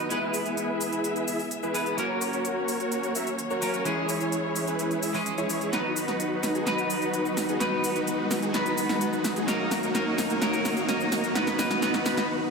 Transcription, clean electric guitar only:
0.09 G#3 B3 E4 B4
1.74 G#3 B3 E4 B4
1.97 F#3 A#3 C#4 A#4
3.61 F#3 A#3 C#4 A#4
3.84 E3 G#3 C#4 G#4
5.13 E3 G#3 C#4 G#4
5.72 F#3 B3 D#4 B4
6.66 F#3 B3 D#4 B4
7.59 F#3 B3 D#4 B4
8.53 F#3 B3 D#4 B4
9.47 F#3 A#3 D#4 A#4
9.94 F#3 A#3 D#4 A#4
10.40 F#3 A#3 D#4 A#4
10.87 F#3 A#3 D#4 A#4
11.34 F#3 B3 D#4 B4
11.58 F#3 B3 D#4 B4
11.81 F#3 B3 D#4 B4
12.05 F#3 B3 D#4 B4

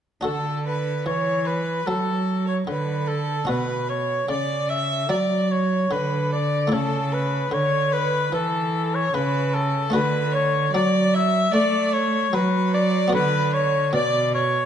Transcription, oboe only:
0.23 A4
0.67 B4
1.07 C#5
1.47 B4
1.87 A4
2.49 C#5
2.68 B4
3.08 A4
3.48 B4
3.90 C#5
4.28 D5
4.70 E5
5.10 D5
5.51 C#5
5.92 B4
6.33 D5
6.73 A4
7.14 B4
7.53 C#5
7.93 B4
8.34 A4
8.95 C#5
9.14 B4
9.54 A4
9.93 B4
10.35 C#5
10.74 D5
11.16 E5
11.54 D5
11.94 C#5
12.34 B4
12.74 D5
13.15 B4
13.54 C#5
13.94 D5
14.34 C#5

